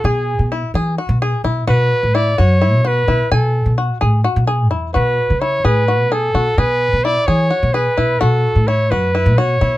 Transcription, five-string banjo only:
X:1
M:7/8
L:1/8
Q:1/4=129
K:Bdor
V:1 name="Five-string banjo"
G2 E G F G E | F2 E F E F E | g2 F G F G E | F2 E G F G F |
G2 E G F G E | F2 E F E F E |]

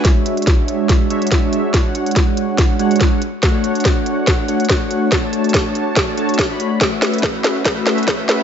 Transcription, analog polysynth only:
X:1
M:4/4
L:1/16
Q:"Swing 16ths" 1/4=142
K:Emix
V:1 name="Analog polysynth"
[G,DFce]8- [G,DFce]2 [G,DFce]2 [G,DFce]4 | [G,DFcf]8- [G,DFcf]2 [G,DFcf]4 z2 | [A,DFcf]8- [A,DFcf]2 [A,DFcf]2 [A,DFcf]4 | [A,DFca]8- [A,DFca]2 [A,DFca]3 [A,DFcb]3 |
[A,CFBe]8 [A,CFBe]8 |]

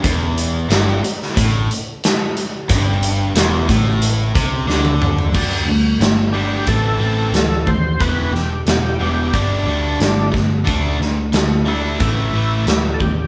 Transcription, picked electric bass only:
X:1
M:4/4
L:1/8
Q:1/4=90
K:Em
V:1 name="Picked electric bass" clef=bass
E,,,2 G,,, z A,,, z3 | G,,,2 E,,, A,,,2 C,, D,,2 | D,, D,, G,,,2 A,,, A,,, D,, ^D,, | E,,,2 E,,, E,,, G,,, D,, G,,, G,,, |
D,, D,, D,,2 A,,, A,,, D,, ^D,, |]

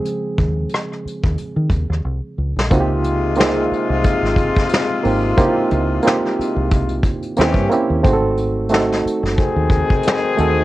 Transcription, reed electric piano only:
X:1
M:4/4
L:1/16
Q:"Swing 16ths" 1/4=90
K:Dblyd
V:1 name="Reed electric piano"
A8- A2 z6 | [B,CEF_G=G]3 z [B,CEFA]6 z4 [B,CEFG]2 | [B,CE=EFG]3 z [B,C_EFG]6 z2 [B,CD_FG]2 [B,CDFG]2 | [=A,CE_G_A=A]3 z [A,CEGA]6 z4 [A,CEGA]2 |]
V:2 name="Reed electric piano" clef=bass
[D,F,A,C]2 z12 z2 | z16 | z16 | z16 |]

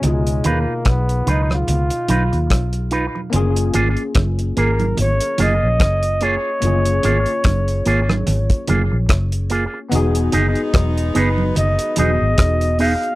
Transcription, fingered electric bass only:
X:1
M:4/4
L:1/16
Q:"Swing 16ths" 1/4=73
K:F#
V:1 name="Fingered electric bass" clef=bass
C,,2 D,, z B,,,2 C,,2 C,, z B,,, D,, B,,,3 z | F,,,2 G,,, z F,,,2 G,,,2 G,,, z F,,, A,,, F,,,3 z | F,,,2 G,,, z F,,,2 G,,,2 G,,, z F,,, A,,, F,,,3 z | =E,,,2 F,,, z E,,,2 F,,,2 F,,, z E,,, G,,, E,,,3 z |]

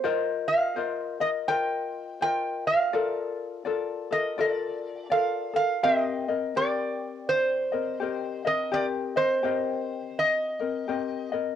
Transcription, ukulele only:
X:1
M:4/4
L:1/8
Q:"Swing" 1/4=83
K:Cdor
V:1 name="Ukulele"
[FBce]2 [FBce] [FBe] [FBce]2 [FBce]2 | [FABd]2 [FABd] [FAB] [FABd]2 [FABd] [FAB] | [CGBe] [CBe] [CGB]3 [CBe] [CGBe] [CBe] | [CGB] [CBe] [CGBe]3 [CBe] [CGBe] [CBe] |]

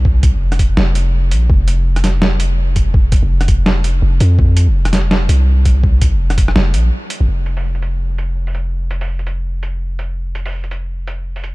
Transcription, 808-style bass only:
X:1
M:4/4
L:1/16
Q:"Swing 16ths" 1/4=166
K:Cphr
V:1 name="808-style bass" clef=bass
C,,3 F,,,4- F,,, F,,,6 B,,,2 | F,,,16- | F,,,3 F,,,8- F,,, F,,,2 F,,2- | F,,3 F,,,6- F,,, C,,6- |
C,,3 F,,,4- F,,, F,,,2 B,,,2 z3 A,,, | F,,,16- | F,,,16- | F,,,16 |]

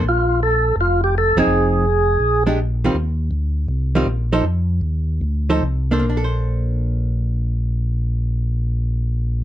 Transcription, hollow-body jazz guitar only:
X:1
M:4/4
L:1/8
Q:"Swing" 1/4=157
K:Bb
V:1 name="Hollow-body jazz guitar"
z6 z [F,CE_A]- | [F,CE_A]2 z3 [_A,DG] z [E,G,CF] | z4 z [E,G,CF] z [F,EAc] | z4 z [F,EAc] z [B,DAc] |
[B,DAc]8- | [B,DAc]8 |]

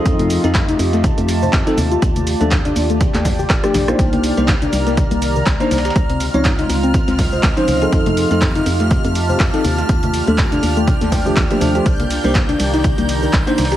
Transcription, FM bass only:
X:1
M:4/4
L:1/16
Q:"Swing 16ths" 1/4=122
K:Cdor
V:1 name="FM bass" clef=bass
F,,3 F,,3 F,,3 F,,3 F,, z E,, z | E,,3 E,,3 E,,3 E,,3 E,,, z B,,, z | C,,3 C,,3 C,,3 C,,3 C,, z C,, z | _D,,3 D,,3 D,,3 D,,3 D,, z D,, z |
F,,3 F,,3 F,,3 F,,3 F,, z E,, z | E,,3 E,,3 E,,3 E,,3 E,, z E,, z | C,,3 C,,3 C,,3 C,,3 C,, z C,, z |]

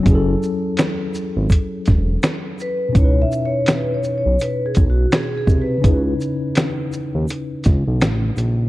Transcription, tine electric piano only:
X:1
M:4/4
L:1/8
Q:"Swing 16ths" 1/4=83
K:C#m
V:1 name="Tine electric piano"
[F,CEGA]8 | [B,,CDEB]8 | [C,CDEB]8 |]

